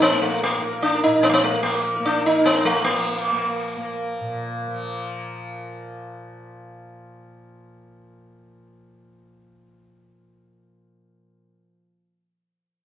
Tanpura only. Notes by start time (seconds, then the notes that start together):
Already playing: A#2 F3 A#3
0.12 A#3
0.58 A#3
1.06 A#2
1.51 F3
1.99 A#3
2.45 A#3
2.84 F3
3.32 A#3
3.77 A#3
4.21 A#2
4.67 F3